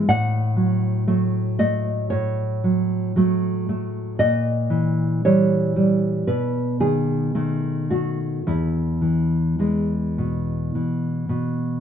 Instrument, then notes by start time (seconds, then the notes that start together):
nylon-string guitar
0.08 A2 F#5
0.56 F#3
1.07 F#3 A3
1.59 A3 D#5
2.10 A2 C#5
2.64 F#3
3.16 F#3 A3
3.69 A3
4.19 A#2 D#5
4.70 E3
5.25 E3 G3 C#5
5.76 G3
6.27 B2 B4
6.80 D#3 G#4
7.35 D#3 A3
7.90 A3 F#4
8.47 E2 E4
9.02 E3
9.59 E3 G#3
10.18 B2
10.75 E3
11.29 B2